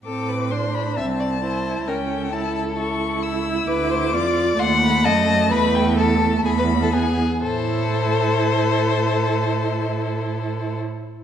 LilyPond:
<<
  \new Staff \with { instrumentName = "Violin" } { \time 4/4 \key a \minor \tempo 4 = 129 d'''4 c'''8 b''8 a''2 | g''4 a''8 a''8 cis'''4 e'''4 | d'''2 bis''8 b''8 a''8 a''8 | b''8 g''8 a''4 b''4 gis''8 r8 |
c''1~ | c''1 | }
  \new Staff \with { instrumentName = "Violin" } { \time 4/4 \key a \minor a'8 b'8 c''4 e''8 d''8 c''4 | bes'8 a'2. r8 | b'8 c''8 d''4 fis''4 dis''4 | b'4 a'4 gis'16 b'8 a'16 gis'4 |
a'1~ | a'1 | }
  \new Staff \with { instrumentName = "Viola" } { \time 4/4 \key a \minor c'4 d'4 c'4 e'4 | cis'4 e'4 e'2~ | e'4 f'4 a2~ | a2. b8 r8 |
e'1~ | e'1 | }
  \new Staff \with { instrumentName = "Cello" } { \clef bass \time 4/4 \key a \minor a,2 c,2 | cis,1 | d,4 f,4 dis,4 fis,4 | e,2 e,4. r8 |
a,1~ | a,1 | }
>>